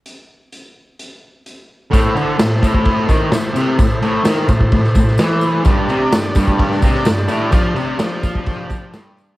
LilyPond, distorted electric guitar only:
\new Staff \with { instrumentName = "Distorted electric guitar" } { \clef bass \time 4/4 \key a \minor \tempo 4 = 128 r1 | a,8 d8 a,8 a,4 dis8 a,8 c8 | a,8 a,8 dis8 a,8 a,8 a,8 e4 | g,8 c8 g,8 g,4 c8 g,8 a,8 |
f8 c8 f2 g,4 | }